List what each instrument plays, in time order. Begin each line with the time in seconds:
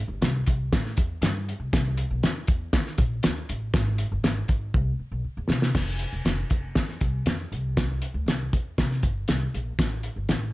0.08 upright bass G1
0.21 upright bass C2, snare, closed hi-hat
0.46 upright bass C2, kick, closed hi-hat
0.72 upright bass A2, kick, snare, closed hi-hat
0.85 snare
0.97 upright bass E2, kick, closed hi-hat
1.21 upright bass G2, snare, closed hi-hat
1.49 closed hi-hat
1.60 upright bass C2
1.73 upright bass C2, kick, snare, closed hi-hat
1.97 closed hi-hat
2.11 upright bass B1
2.23 upright bass E2, snare, closed hi-hat
2.47 upright bass E2, kick, closed hi-hat
2.73 upright bass D#3, kick, snare, closed hi-hat
2.86 snare
2.98 upright bass A#1, kick, closed hi-hat
3.23 upright bass D#2, snare, closed hi-hat
3.49 upright bass A1, closed hi-hat
3.74 upright bass G#1, kick, snare, closed hi-hat
3.98 closed hi-hat
4.12 upright bass G1
4.23 upright bass G#1, snare, closed hi-hat
4.48 upright bass G#1, kick, closed hi-hat
4.74 upright bass C2, kick
4.99 muted upright bass stroke
5.12 upright bass B1
5.24 muted upright bass stroke
5.37 upright bass E2
5.49 upright bass C3, snare
5.62 snare
5.75 upright bass F1, kick, snare, crash
5.99 closed hi-hat
6.13 upright bass E1
6.25 upright bass F1, snare, closed hi-hat
6.50 upright bass F1, kick, closed hi-hat
6.75 upright bass F2, kick, snare, closed hi-hat
6.89 snare
7.01 upright bass C2, kick, closed hi-hat
7.26 upright bass F2, snare, closed hi-hat
7.52 upright bass C2, closed hi-hat
7.77 kick, snare, closed hi-hat
8.02 closed hi-hat
8.14 upright bass D2
8.26 upright bass C2, snare, closed hi-hat
8.53 upright bass E2, kick, closed hi-hat
8.78 upright bass C3, kick, snare, closed hi-hat
8.91 snare
9.03 upright bass G1, kick, closed hi-hat
9.28 upright bass C2, snare, closed hi-hat
9.54 upright bass A#1, closed hi-hat
9.79 upright bass A1, kick, snare, closed hi-hat
10.03 closed hi-hat
10.16 upright bass G1
10.29 upright bass A1, snare, closed hi-hat